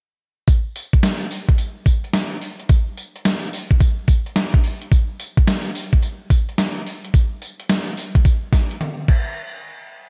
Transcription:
0.48 kick loud
0.48 closed hi-hat medium
0.48 tambourine medium
0.76 closed hi-hat medium
0.76 tambourine medium
0.93 kick medium
0.93 closed hi-hat medium
1.03 snare loud
1.03 closed hi-hat medium
1.03 tambourine medium
1.31 open hi-hat medium
1.31 tambourine medium
1.49 kick medium
1.49 closed hi-hat medium
1.58 closed hi-hat medium
1.58 tambourine medium
1.86 kick medium
1.86 closed hi-hat medium
1.86 tambourine medium
2.04 closed hi-hat medium
2.13 snare loud
2.13 closed hi-hat medium
2.13 tambourine loud
2.41 open hi-hat medium
2.59 closed hi-hat medium
2.69 kick loud
2.69 closed hi-hat medium
2.69 tambourine medium
2.97 closed hi-hat medium
2.97 tambourine medium
3.16 closed hi-hat medium
3.25 snare loud
3.25 closed hi-hat medium
3.25 tambourine medium
3.53 open hi-hat medium
3.53 tambourine medium
3.71 kick medium
3.71 closed hi-hat medium
3.80 kick loud
3.80 closed hi-hat medium
3.80 tambourine medium
4.08 kick medium
4.08 closed hi-hat medium
4.08 tambourine medium
4.26 closed hi-hat medium
4.36 snare loud
4.36 closed hi-hat medium
4.36 tambourine loud
4.54 kick loud
4.64 open hi-hat medium
4.82 closed hi-hat soft
4.92 kick loud
4.92 closed hi-hat medium
4.92 tambourine medium
5.20 closed hi-hat medium
5.20 tambourine medium
5.37 kick medium
5.37 closed hi-hat medium
5.47 snare loud
5.47 closed hi-hat medium
5.47 tambourine medium
5.75 open hi-hat medium
5.75 tambourine medium
5.93 kick medium
5.93 closed hi-hat medium
6.02 closed hi-hat medium
6.02 tambourine medium
6.30 kick medium
6.30 closed hi-hat medium
6.30 tambourine medium
6.49 closed hi-hat medium
6.58 snare loud
6.58 closed hi-hat medium
6.58 tambourine loud
6.86 open hi-hat medium
7.05 closed hi-hat soft
7.14 kick loud
7.14 closed hi-hat medium
7.14 tambourine medium
7.42 closed hi-hat medium
7.42 tambourine medium
7.60 closed hi-hat medium
7.69 snare loud
7.69 closed hi-hat medium
7.69 tambourine medium
7.97 open hi-hat medium
7.97 tambourine medium
8.15 kick medium
8.15 closed hi-hat medium
8.25 kick loud
8.25 closed hi-hat medium
8.25 tambourine medium
8.53 kick medium
8.53 snare medium
8.53 closed hi-hat medium
8.53 tambourine medium
8.71 closed hi-hat medium
8.81 closed hi-hat medium
8.81 high tom medium
9.08 kick loud
9.08 crash medium

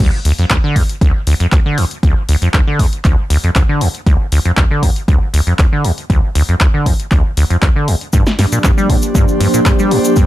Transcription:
0.00 0.11 D2 loud
0.00 kick loud
0.00 closed hi-hat medium
0.00 crash medium
0.25 0.33 D2 loud
0.25 open hi-hat loud
0.39 0.45 F2 medium
0.39 closed hi-hat medium
0.50 0.58 D2 loud
0.50 kick loud
0.50 clap loud
0.64 0.77 D3 medium
0.76 0.83 D2 medium
0.76 kick medium
0.76 open hi-hat loud
0.89 closed hi-hat medium
1.01 1.12 D2 loud
1.01 kick loud
1.01 closed hi-hat medium
1.27 1.34 D2 loud
1.27 open hi-hat loud
1.40 1.47 F2 medium
1.40 closed hi-hat medium
1.52 1.60 D2 loud
1.52 kick loud
1.52 clap loud
1.52 closed hi-hat medium
1.66 1.79 D3 medium
1.78 1.85 D2 medium
1.78 open hi-hat loud
1.91 closed hi-hat medium
2.03 2.14 D2 loud
2.03 kick loud
2.03 closed hi-hat medium
2.29 2.36 D2 loud
2.29 open hi-hat loud
2.42 2.49 F2 medium
2.42 closed hi-hat medium
2.54 2.61 D2 loud
2.54 kick loud
2.54 clap loud
2.67 2.81 D3 medium
2.79 2.87 D2 medium
2.79 kick medium
2.79 open hi-hat loud
2.93 closed hi-hat medium
3.05 3.16 D2 loud
3.05 kick loud
3.05 clap medium
3.05 closed hi-hat medium
3.30 3.38 D2 loud
3.30 open hi-hat loud
3.44 3.50 F2 medium
3.44 closed hi-hat medium
3.55 3.63 D2 loud
3.55 kick loud
3.55 clap loud
3.55 closed hi-hat medium
3.69 3.83 D3 medium
3.81 3.88 D2 medium
3.81 open hi-hat loud
3.95 closed hi-hat medium
4.06 4.18 D2 loud
4.06 kick loud
4.06 closed hi-hat medium
4.32 4.39 D2 loud
4.32 open hi-hat loud
4.45 4.52 F2 medium
4.45 closed hi-hat medium
4.57 4.65 D2 loud
4.57 kick loud
4.57 clap loud
4.71 4.84 D3 medium
4.83 4.90 D2 medium
4.83 kick medium
4.83 open hi-hat loud
4.96 closed hi-hat medium
5.08 5.19 D2 loud
5.08 kick loud
5.08 closed hi-hat medium
5.34 5.41 D2 loud
5.34 open hi-hat loud
5.47 5.54 F2 medium
5.47 closed hi-hat medium
5.59 5.66 D2 loud
5.59 kick loud
5.59 clap loud
5.59 closed hi-hat medium
5.72 5.86 D3 medium
5.84 5.92 D2 medium
5.84 open hi-hat loud
5.98 closed hi-hat medium
6.10 6.21 D2 loud
6.10 kick loud
6.10 closed hi-hat medium
6.35 6.43 D2 loud
6.35 open hi-hat loud
6.49 6.55 F2 medium
6.49 closed hi-hat soft
6.60 6.68 D2 loud
6.60 kick loud
6.60 clap loud
6.74 6.88 D3 medium
6.86 6.94 D2 medium
6.86 kick medium
6.86 open hi-hat loud
7.00 closed hi-hat medium
7.11 7.23 D2 loud
7.11 kick loud
7.11 clap medium
7.11 closed hi-hat medium
7.37 7.44 D2 loud
7.37 open hi-hat loud
7.50 7.57 F2 medium
7.50 closed hi-hat soft
7.62 7.70 D2 loud
7.62 kick loud
7.62 clap loud
7.62 closed hi-hat medium
7.76 7.89 D3 medium
7.88 7.95 D2 medium
7.88 open hi-hat loud
8.01 closed hi-hat soft
8.13 8.24 G2 loud
8.13 10.26 F3 medium
8.13 10.26 A#3 medium
8.13 10.26 D4 medium
8.13 10.26 G4 medium
8.13 10.26 D5 medium
8.13 kick loud
8.13 closed hi-hat medium
8.13 shaker medium
8.26 snare medium
8.26 shaker soft
8.39 8.46 G2 loud
8.39 snare medium
8.39 open hi-hat loud
8.52 8.59 A#2 medium
8.52 closed hi-hat soft
8.52 shaker medium
8.64 8.72 G2 loud
8.64 kick loud
8.64 clap loud
8.64 shaker medium
8.72 10.26 C5 medium
8.78 8.91 G3 medium
8.78 shaker soft
8.84 10.26 G4 medium
8.89 8.97 G2 medium
8.89 kick medium
8.89 open hi-hat loud
9.02 closed hi-hat medium
9.02 shaker medium
9.15 9.26 G2 loud
9.15 kick loud
9.15 closed hi-hat medium
9.15 shaker medium
9.28 shaker soft
9.40 9.48 G2 loud
9.40 open hi-hat loud
9.54 9.60 A#2 medium
9.54 closed hi-hat medium
9.54 shaker medium
9.66 9.73 G2 loud
9.66 kick loud
9.66 clap loud
9.66 closed hi-hat medium
9.66 shaker medium
9.79 9.93 G3 medium
9.79 shaker soft
9.91 9.99 G2 medium
9.91 open hi-hat loud
10.05 closed hi-hat soft
10.05 shaker medium
10.16 10.26 G2 loud
10.16 kick loud
10.16 closed hi-hat medium
10.16 shaker medium

